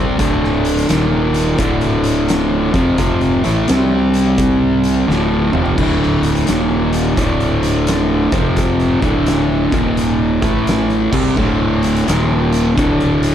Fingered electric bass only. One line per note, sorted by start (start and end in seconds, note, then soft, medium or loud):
0.00 0.18 C2 loud
0.19 0.85 D1 medium
0.89 1.55 D#1 medium
1.59 2.70 D1 loud
2.74 2.97 F1 loud
2.98 3.41 F1 loud
3.45 3.67 A1 loud
3.70 5.04 C2 medium
5.08 5.50 D1 medium
5.54 5.76 F1 medium
5.79 6.44 D1 loud
6.49 7.14 D#1 medium
7.18 8.29 D1 loud
8.32 8.98 F1 loud
9.02 9.68 D1 loud
9.72 10.38 D#1 loud
10.43 11.09 A1 loud
11.13 11.35 C2 loud
11.37 12.03 D1 loud
12.07 12.73 D#1 medium
12.78 13.35 D1 loud